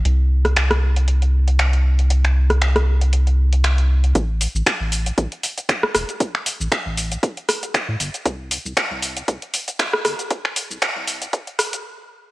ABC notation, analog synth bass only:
X:1
M:4/4
L:1/16
Q:"Swing 16ths" 1/4=117
K:Am
V:1 name="Analog synth bass" clef=bass
C,,16- | C,,16 | A,,,2 z A,,, z A,,,2 z A,,, z4 z E,,, z | z3 A,,, z A,,,2 z6 A,, G,,, z |
C,,2 z C,, z C,,2 z C,, z4 z G,,, z | z3 C,, z C,,2 z8 z |]